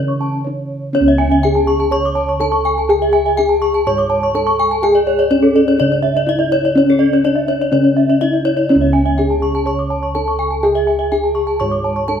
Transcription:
0.00 1.39 C#3 medium
0.00 0.46 C#4 soft
0.00 0.42 E4 medium
0.08 0.21 C#6 soft
0.21 0.33 A5 medium
0.44 0.55 D4 soft
0.44 0.94 C#5 soft
0.93 1.42 C#4 medium
0.93 2.36 C#4 medium
0.93 1.07 C#5 medium
1.01 3.84 C#2 medium
1.08 1.20 E5 medium
1.18 1.31 G#5 medium
1.32 1.44 E5 medium
1.43 1.52 D4 soft
1.43 1.92 G#4 medium
1.43 1.55 G#5 medium
1.55 1.68 A5 medium
1.67 1.80 C#6 medium
1.80 1.92 A5 medium
1.91 2.40 C#5 medium
1.91 2.04 C#6 loud
2.05 2.17 D6 medium
2.15 2.28 A5 medium
2.29 2.41 C#6 medium
2.40 2.49 D4 soft
2.40 2.88 A4 medium
2.40 2.53 A5 medium
2.52 2.64 C#6 medium
2.65 2.77 G#5 medium
2.78 2.89 A5 medium
2.89 4.30 G#4 medium
2.89 3.37 G#4 loud
2.89 3.01 G#5 medium
3.02 3.14 E5 medium
3.13 3.25 G#5 loud
3.26 3.38 E5 medium
3.37 3.47 D4 soft
3.37 3.86 G#4 medium
3.37 3.49 G#5 medium
3.49 3.61 A5 medium
3.62 3.74 C#6 medium
3.74 3.86 A5 medium
3.86 5.27 G#2 medium
3.86 4.35 C#5 medium
3.86 3.98 C#6 medium
3.98 4.10 D6 medium
4.10 4.22 A5 medium
4.23 4.35 C#6 medium
4.34 4.42 D4 soft
4.34 4.83 A4 medium
4.34 4.47 A5 medium
4.47 4.58 C#6 medium
4.60 4.71 G#5 medium
4.71 4.83 A5 medium
4.83 5.31 G#4 medium
4.83 6.24 G#4 medium
4.83 4.95 G#5 medium
4.95 5.07 D5 medium
5.07 5.19 C#5 medium
5.19 5.31 D5 medium
5.30 5.79 C#4 loud
5.30 5.39 D4 soft
5.30 5.43 C#5 loud
5.43 5.55 A4 medium
5.56 5.67 D5 medium
5.68 5.80 C#5 medium
5.78 7.21 C#3 medium
5.78 6.27 D4 medium
5.78 5.92 D5 loud
5.92 6.04 C#5 medium
6.03 6.15 E5 medium
6.17 6.28 D5 medium
6.27 6.35 D4 medium
6.27 6.75 E4 medium
6.27 6.40 E5 medium
6.39 6.51 D5 medium
6.52 6.64 C#5 loud
6.65 6.77 D5 medium
6.75 8.17 C#4 medium
6.75 7.24 C#4 loud
6.75 6.89 C#5 medium
6.90 7.01 A4 medium
6.99 7.12 D5 medium
7.13 7.25 C#5 medium
7.24 7.32 D4 soft
7.24 7.73 D4 loud
7.24 7.37 D5 medium
7.36 7.48 E5 medium
7.48 7.61 C#5 medium
7.62 7.73 D5 medium
7.72 9.14 C#3 medium
7.72 8.21 C#4 medium
7.72 7.85 C#5 medium
7.84 7.97 D5 medium
7.97 8.09 E5 medium
8.10 8.21 D5 medium
8.21 8.30 D4 soft
8.21 8.70 E4 medium
8.21 8.33 E5 medium
8.33 8.46 D5 medium
8.45 8.57 C#5 medium
8.57 8.69 D5 medium
8.69 10.11 C#4 medium
8.69 9.18 C#4 medium
8.69 8.82 C#5 medium
8.75 11.59 C#2 medium
8.81 8.94 E5 soft
8.93 9.06 G#5 medium
9.06 9.18 E5 medium
9.18 9.27 D4 soft
9.18 9.67 G#4 medium
9.18 9.30 G#5 medium
9.30 9.42 A5 medium
9.42 9.54 C#6 medium
9.55 9.67 A5 medium
9.66 10.15 C#5 medium
9.66 9.79 C#6 medium
9.79 9.91 D6 soft
9.90 10.03 A5 medium
10.03 10.15 C#6 medium
10.15 10.24 D4 soft
10.15 10.63 A4 medium
10.15 10.27 A5 medium
10.28 10.40 C#6 soft
10.39 10.51 G#5 medium
10.51 10.63 A5 soft
10.63 12.05 G#4 medium
10.63 11.11 G#4 medium
10.63 10.75 G#5 medium
10.75 10.88 E5 medium
10.87 11.00 G#5 medium
10.99 11.11 E5 medium
11.12 11.20 D4 soft
11.12 11.61 G#4 medium
11.12 11.24 G#5 medium
11.24 11.36 A5 soft
11.35 11.48 C#6 medium
11.47 11.60 A5 medium
11.60 12.20 G#2 medium
11.60 12.09 C#5 medium
11.60 11.72 C#6 medium
11.71 11.84 D6 soft
11.84 11.97 A5 medium
11.96 12.08 C#6 medium
12.08 12.17 D4 soft
12.08 12.20 A4 medium
12.08 12.20 A5 medium

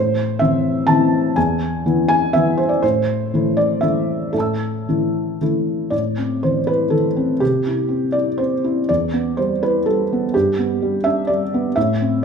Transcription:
0.00 0.40 A2 soft
0.00 0.40 C5 medium
0.39 0.84 E3 soft
0.39 0.84 C4 soft
0.39 0.84 E4 soft
0.39 0.87 E5 medium
0.87 1.32 E3 soft
0.87 1.32 C4 soft
0.87 1.32 E4 soft
0.87 1.35 A5 medium
1.36 1.84 E2 soft
1.36 2.07 G#5 medium
1.86 2.31 E3 soft
1.86 2.31 B3 soft
1.86 2.31 E4 soft
2.08 2.34 G#5 medium
2.33 2.79 E3 soft
2.33 2.80 B3 soft
2.33 2.80 E4 soft
2.33 2.58 E5 medium
2.58 2.70 C5 medium
2.69 2.82 D5 medium
2.83 3.31 A2 soft
2.83 3.57 C5 medium
3.34 3.79 E3 soft
3.34 3.79 A3 soft
3.34 3.79 E4 soft
3.57 3.82 D5 medium
3.81 4.30 E3 soft
3.81 4.30 A3 soft
3.81 4.30 E4 soft
3.81 4.32 E5 medium
4.33 4.86 A2 soft
4.33 5.40 A4 medium
4.33 5.88 E5 soft
4.38 5.90 A5 soft
4.38 5.92 E6 soft
4.89 5.37 E3 soft
4.89 5.37 A3 soft
4.89 5.38 E4 soft
5.41 5.89 E3 soft
5.41 5.89 A3 soft
5.41 5.89 E4 soft
5.90 7.37 A2 soft
5.90 6.42 D5 medium
6.18 6.58 C4 soft
6.43 6.83 E3 soft
6.43 6.68 C5 medium
6.67 7.07 E4 soft
6.67 6.92 B4 medium
6.90 7.31 E3 soft
6.90 7.40 A4 medium
7.17 7.41 C4 soft
7.40 8.85 C3 soft
7.40 8.14 G4 medium
7.67 8.05 E4 soft
7.89 8.29 C4 soft
8.12 8.54 E4 soft
8.12 8.38 D5 medium
8.38 8.79 C4 soft
8.38 8.88 C5 medium
8.64 8.89 E4 soft
8.89 10.31 E2 soft
8.89 9.37 D5 medium
9.13 9.52 B3 soft
9.37 9.77 G3 soft
9.37 9.61 C5 medium
9.63 10.02 E4 soft
9.63 9.86 B4 medium
9.86 10.25 G3 soft
9.86 10.34 A4 medium
10.13 10.35 B3 soft
10.34 11.73 G2 soft
10.34 11.05 G4 medium
10.59 10.96 B3 soft
10.82 11.20 G3 soft
11.04 11.43 D4 soft
11.04 11.28 E5 medium
11.27 11.67 G3 soft
11.27 11.75 D5 medium
11.54 11.77 B3 soft
11.76 12.25 A2 soft
11.76 12.24 E5 medium
12.01 12.25 C4 soft

